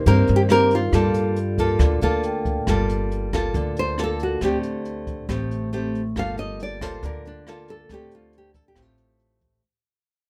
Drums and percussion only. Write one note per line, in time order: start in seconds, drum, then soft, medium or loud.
0.06 kick medium
0.06 closed hi-hat soft
0.27 closed hi-hat soft
0.49 cross-stick soft
0.49 closed hi-hat soft
0.71 closed hi-hat soft
0.93 kick medium
0.93 cross-stick soft
0.93 closed hi-hat medium
1.14 closed hi-hat soft
1.36 closed hi-hat soft
1.58 kick soft
1.58 closed hi-hat soft
1.80 kick medium
1.80 cross-stick soft
1.80 closed hi-hat medium
2.01 closed hi-hat soft
2.23 closed hi-hat soft
2.45 kick soft
2.45 closed hi-hat soft
2.67 kick soft
2.67 cross-stick medium
2.67 closed hi-hat soft
2.89 closed hi-hat soft
3.12 closed hi-hat soft
3.33 kick soft
3.33 cross-stick soft
3.33 closed hi-hat soft
3.55 kick medium
3.55 closed hi-hat soft
3.77 closed hi-hat soft
3.98 cross-stick soft
3.98 closed hi-hat soft
4.19 closed hi-hat soft
4.41 kick soft
4.41 cross-stick medium
4.41 closed hi-hat medium
4.63 closed hi-hat soft
4.85 closed hi-hat soft
5.07 kick soft
5.07 closed hi-hat soft
5.29 kick soft
5.29 cross-stick medium
5.29 closed hi-hat soft
5.51 closed hi-hat soft
5.73 closed hi-hat soft
5.95 closed hi-hat soft
6.16 kick soft
6.16 cross-stick soft
6.16 closed hi-hat soft
6.38 closed hi-hat soft
6.60 closed hi-hat soft
6.81 kick soft
6.81 cross-stick medium
6.81 closed hi-hat soft
7.03 kick soft
7.03 closed hi-hat soft
7.25 closed hi-hat soft
7.47 cross-stick soft
7.47 closed hi-hat soft
7.68 closed hi-hat soft
7.89 kick soft
7.89 cross-stick soft
7.89 closed hi-hat soft
8.11 closed hi-hat soft
8.33 closed hi-hat soft
8.54 kick soft
8.54 closed hi-hat soft
8.76 kick soft
8.76 cross-stick medium
8.76 closed hi-hat soft
8.98 closed hi-hat soft
9.20 closed hi-hat soft
9.41 kick soft
9.41 closed hi-hat soft